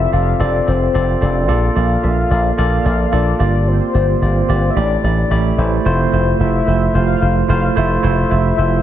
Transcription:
Already playing: tine electric piano C4 F4 A4 D5 F5, soft synth lead E5
0.12 slap bass F1, tine electric piano C4 F4 A4 D5, soft synth lead F5
0.39 slap bass F1, tine electric piano C4 F4 A4 D5, soft synth lead D5
0.67 slap bass F1, tine electric piano C4 F4 A4 D5, soft synth lead C5
0.94 slap bass F1, tine electric piano C4 F4 A4 D5
1.21 slap bass F1, tine electric piano C4 F4 A4 D5, soft synth lead D5
1.48 slap bass A#1, tine electric piano A#3 F4 A4 D5
1.75 slap bass A#1, tine electric piano A#3 F4 A4 D5, soft synth lead F5
2.03 slap bass A#1, tine electric piano A#3 F4 A4 E5
2.30 slap bass A#1, tine electric piano A#3 F4 A4 D5
2.57 slap bass A#1, tine electric piano A#3 F4 A4 D5, soft synth lead F5
2.85 slap bass A#1, tine electric piano A#3 F4 A4 D5
3.12 slap bass A#1, tine electric piano A#3 F4 A4 D5, soft synth lead D5
3.39 slap bass G1, tine electric piano A#3 F4 G4 D5
3.68 soft synth lead C5
3.94 slap bass G1, tine electric piano A#3 F4 G4 D5
4.21 slap bass G1, tine electric piano A#3 F4 G4 D5
4.48 slap bass G1, tine electric piano A#3 F4 G4 D5
4.70 soft synth lead E5
4.76 slap bass A1, tine electric piano A3 E4 G4 D5, soft synth lead D5
5.03 slap bass A1, tine electric piano A3 E4 G4 D5
5.30 slap bass A1, tine electric piano A3 E4 G4 D5
5.58 slap bass A1, tine electric piano A3 E4 G4 C5
5.85 slap bass F1, tine electric piano A3 E4 F4 C5, soft synth lead C5
6.13 slap bass F1, tine electric piano A3 E4 F4 C5
6.40 slap bass F1, tine electric piano A3 E4 F4 C5, soft synth lead E5
6.67 slap bass F1, tine electric piano A3 E4 F4 C5
6.94 slap bass F1, tine electric piano A3 E4 F4 C5, soft synth lead F5
7.21 slap bass F1, tine electric piano A3 E4 F4 C5
7.49 slap bass F1, tine electric piano A3 E4 F4 C5, soft synth lead F5
7.76 slap bass F1, tine electric piano A3 E4 F4 C5, soft synth lead E5
8.03 slap bass F1, tine electric piano A3 E4 F4 C5
8.30 slap bass F1, tine electric piano A3 E4 F4 C5
8.58 slap bass F1, tine electric piano A3 E4 F4 C5

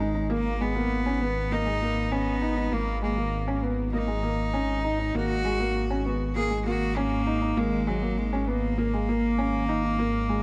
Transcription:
Already playing: detuned saw bass G#1, cello G#3
0.00 felt piano D#4
0.15 felt piano D#4
0.30 felt piano A#3, cello A#3
0.61 felt piano G#3, cello B3
0.76 felt piano A#3
1.06 felt piano C#4
1.21 felt piano B3
1.51 felt piano A#3, cello D#4
1.66 felt piano G#3
1.82 felt piano A#3
2.12 cello B3, felt piano C#4
2.42 felt piano D#4
2.57 felt piano D#4
2.72 detuned saw bass G#1, felt piano A#3, cello A#3
3.02 felt piano G#3, cello A#3
3.17 felt piano A#3
3.48 felt piano C#4
3.63 felt piano B3
3.93 felt piano A#3, cello D#4
4.07 felt piano G#3
4.23 felt piano A#3
4.54 felt piano C#4
4.84 felt piano D#4
4.99 felt piano D#4
5.15 detuned saw bass G#1, felt piano A#3, cello F#4
5.45 felt piano G#3
5.60 felt piano A#3
5.90 felt piano C#4
6.05 felt piano B3
6.36 felt piano A#3, cello G#4
6.50 felt piano G#3
6.66 felt piano A#3, cello F#4
6.96 cello A#3, felt piano C#4
7.27 felt piano D#4
7.41 felt piano D#4
7.57 detuned saw bass G#1, cello G#3, felt piano A#3
7.87 cello F#3, felt piano G#3
8.02 felt piano A#3
8.18 cello G#3
8.33 felt piano C#4
8.47 cello A#3, felt piano B3
8.78 felt piano A#3
8.94 felt piano G#3
9.09 felt piano A#3
9.38 felt piano C#4
9.69 felt piano D#4
9.84 felt piano D#4
9.99 felt piano A#3
10.29 felt piano G#3

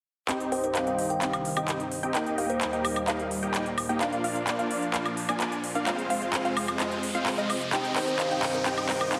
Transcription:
0.29 supersaw synth C2 G2 D#3 C4 D#4 G4 D#5 G5, synth pluck G5, clap, closed hi-hat, riser
0.40 closed hi-hat
0.52 supersaw synth C4 D#4 G4 D#5 G5, kalimba C5, synth pluck G5, open hi-hat
0.64 kalimba C5, closed hi-hat
0.75 kalimba F5, clap, closed hi-hat
0.87 supersaw synth C4 D#4 G4 D#5 G5, kalimba F5, synth pluck G5, closed hi-hat
0.99 open hi-hat
1.10 kalimba G5, closed hi-hat
1.22 supersaw synth C4 D#4 G4 D#5 F5, synth pluck F5, clap, closed hi-hat
1.33 closed hi-hat, high woodblock
1.45 open hi-hat
1.57 supersaw synth C4 D#4 G4 D#5 G5, synth pluck G5, closed hi-hat, high woodblock
1.68 clap, closed hi-hat
1.80 closed hi-hat
1.92 open hi-hat
2.03 supersaw synth C4 D#4 G4 D#5 G5, synth pluck G5, closed hi-hat
2.15 supersaw synth D#2 A#2 G3 A#3 D#4 G4 D#5 G5, synth pluck G5, clap, closed hi-hat
2.26 closed hi-hat
2.38 supersaw synth A#3 D#4 G4 D#5 G5, kalimba F5, synth pluck G5, open hi-hat
2.50 kalimba C5, closed hi-hat
2.61 clap, closed hi-hat
2.73 supersaw synth A#3 D#4 G4 D#5 G5, synth pluck G5, closed hi-hat
2.85 open hi-hat, high woodblock
2.96 closed hi-hat, high woodblock
3.08 supersaw synth A#3 D#4 G4 D#5 F5, synth pluck F5, clap, closed hi-hat
3.20 closed hi-hat
3.31 open hi-hat
3.43 supersaw synth A#3 D#4 G4 D#5 G5, synth pluck G5, closed hi-hat
3.54 clap, closed hi-hat
3.66 closed hi-hat
3.78 open hi-hat, high woodblock
3.89 supersaw synth A#3 D#4 G4 D#5 G5, synth pluck G5, closed hi-hat
4.01 supersaw synth A#2 F3 A#3 D4 F4 D5 F5, synth pluck F5, clap, closed hi-hat
4.13 closed hi-hat
4.24 supersaw synth A#3 D4 F4 D5 F5, synth pluck F5, open hi-hat
4.36 closed hi-hat
4.47 clap, closed hi-hat
4.59 supersaw synth A#3 D4 F4 D5 F5, synth pluck F5, closed hi-hat
4.71 open hi-hat
4.82 closed hi-hat
4.94 supersaw synth A#3 D4 F4 D5 F5, synth pluck F5, clap, closed hi-hat
5.06 closed hi-hat, high woodblock
5.17 open hi-hat
5.29 supersaw synth A#3 D4 F4 D5 G#5, synth pluck G#5, closed hi-hat, high woodblock
5.40 clap, closed hi-hat
5.52 closed hi-hat
5.64 open hi-hat
5.75 supersaw synth A#3 D4 F4 D5 F5, synth pluck F5, closed hi-hat
5.87 supersaw synth F2 C3 G#3 C4 F4 C5 F5, synth pluck F5, clap, closed hi-hat
5.99 closed hi-hat
6.10 supersaw synth G#3 C4 F4 C5 F5, synth pluck F5, open hi-hat
6.22 closed hi-hat
6.33 clap, closed hi-hat
6.45 supersaw synth G#3 C4 F4 C5 F5, synth pluck F5, closed hi-hat
6.57 open hi-hat, high woodblock
6.68 closed hi-hat, high woodblock
6.80 supersaw synth G#3 C4 F4 C5 D#5, synth pluck D#5, clap, closed hi-hat
6.92 closed hi-hat
7.03 open hi-hat
7.15 supersaw synth G#3 C4 F4 C5 F5, synth pluck F5, closed hi-hat
7.26 clap, open hi-hat
7.38 supersaw synth G#3 C4 F4 C5 D#5, synth pluck D#5, closed hi-hat
7.50 open hi-hat, high woodblock
7.61 closed hi-hat
7.73 supersaw synth C2 G2 D#3 C4 D#4 G4 D#5 G5, synth pluck G5, clap, closed hi-hat
7.85 closed hi-hat
7.96 supersaw synth C4 D#4 G4 D#5 G5, kalimba C5, synth pluck G5, clap, open hi-hat
8.08 kalimba C5, closed hi-hat
8.19 kalimba F5, clap, closed hi-hat
8.31 supersaw synth C4 D#4 G4 D#5 G5, kalimba F5, synth pluck G5, closed hi-hat
8.43 clap, open hi-hat
8.54 kalimba C5, closed hi-hat
8.66 supersaw synth C4 D#4 G4 D#5 G5, synth pluck G5, clap, closed hi-hat
8.78 closed hi-hat, high woodblock
8.89 supersaw synth C4 D#4 G4 D#5 G5, kalimba C5, synth pluck G5, clap, open hi-hat
9.01 kalimba C5, closed hi-hat, high woodblock
9.13 kalimba F5, clap, closed hi-hat

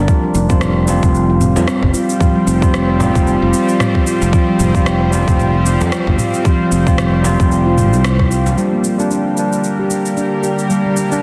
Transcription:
Already playing: tine electric piano G3 A#3 D4
0.07 synth drone F3 G3 C4 G4 C5, handpan F3, tine electric piano G3 C4 F4, kick, shaker
0.24 handpan G3
0.35 fretless electric bass F1, handpan C4, shaker
0.49 tine electric piano G3 C4 F4, handpan C4, kick, shaker
0.61 handpan C4, cross-stick, mid tom, shaker
0.86 tine electric piano G3 C4 F4, frame drum, shaker
1.03 fretless electric bass F1, kick, shaker
1.15 shaker
1.30 handpan F4
1.41 handpan C4, mid tom, shaker
1.56 fretless electric bass F2, frame drum, shaker
1.67 handpan C4, cross-stick, shaker
1.83 fretless electric bass G1, kick
1.94 handpan F4, shaker
2.10 shaker
2.19 handpan F3, tine electric piano G3 C4 F4, kick, mid tom, shaker
2.35 handpan G3
2.47 fretless electric bass F1, handpan C4, shaker
2.61 tine electric piano G3 C4 F4, handpan C4, kick, shaker
2.73 handpan C4, cross-stick, shaker
2.98 tine electric piano G3 C4, mid tom, frame drum, shaker
3.02 tine electric piano F4
3.15 fretless electric bass F1, kick, shaker
3.27 shaker
3.42 fretless electric bass F1, handpan F4
3.53 handpan C4, shaker
3.69 shaker
3.80 handpan C4, cross-stick, mid tom, shaker
3.95 kick, cross-stick
4.06 handpan F4, shaker
4.22 fretless electric bass F1, shaker
4.32 handpan F3, tine electric piano G3 C4 F4, kick, shaker
4.48 handpan G3
4.59 fretless electric bass F1, handpan C4, mid tom, shaker
4.74 tine electric piano G3 C4 F4, handpan C4, kick, shaker
4.86 handpan C4, cross-stick, shaker
5.11 tine electric piano G3 C4, frame drum, shaker
5.15 tine electric piano F4
5.28 fretless electric bass F1, kick, shaker
5.39 mid tom, shaker
5.54 handpan F4
5.65 handpan C4, shaker
5.81 fretless electric bass F2, frame drum, shaker
5.92 handpan C4, cross-stick, shaker
6.07 fretless electric bass G1, kick
6.18 handpan F4, mid tom, shaker
6.34 shaker
6.44 handpan F3, tine electric piano G3 C4 F4, kick, shaker
6.60 handpan G3
6.72 fretless electric bass F1, handpan C4, shaker
6.86 tine electric piano G3 C4 F4, handpan C4, kick, shaker
6.98 handpan C4, cross-stick, mid tom, shaker
7.22 tine electric piano G3 C4 F4, frame drum, shaker
7.40 fretless electric bass F1, kick, shaker
7.52 shaker
7.66 handpan F4
7.78 handpan C4, mid tom, shaker
7.93 fretless electric bass C2, shaker
8.04 handpan C4, cross-stick, shaker
8.19 kick, cross-stick
8.31 handpan F4, shaker
8.46 frame drum, shaker
8.56 synth drone D3 G3 A#3 G4 A#4, tine electric piano G3 A#3 D4, handpan G3, shaker
8.73 handpan A#3
8.84 handpan D4, shaker
8.98 tine electric piano G3 A#3 D4, handpan D4, shaker
9.11 handpan D4, shaker
9.35 tine electric piano G3 A#3, shaker
9.39 tine electric piano D4
9.52 shaker
9.64 shaker
9.79 handpan G4
9.90 handpan D4, shaker
10.06 shaker
10.17 handpan D4, shaker
10.43 handpan G4, shaker
10.59 shaker
10.69 tine electric piano G3 A#3 D4, handpan G3, shaker
10.85 handpan A#3
10.97 handpan D4, shaker
11.10 tine electric piano G3 A#3 D4, handpan D4, shaker

